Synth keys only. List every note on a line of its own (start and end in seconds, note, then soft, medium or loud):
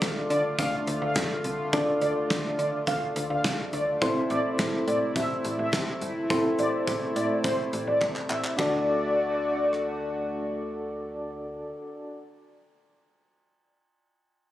0.00 1.69 D4 medium
0.00 1.69 F4 medium
0.00 1.69 A4 medium
0.00 1.69 D5 medium
1.73 3.98 D4 medium
1.73 3.98 F4 medium
1.73 3.98 A4 medium
1.73 3.98 D5 medium
4.02 6.26 C4 medium
4.02 6.26 E4 medium
4.02 6.26 A4 medium
4.02 6.26 C5 medium
6.30 8.55 C4 medium
6.30 8.55 E4 medium
6.30 8.55 A4 medium
6.30 8.55 C5 medium
8.57 12.15 D4 medium
8.57 12.17 F#4 medium
8.57 12.18 A4 medium
8.57 12.19 D5 medium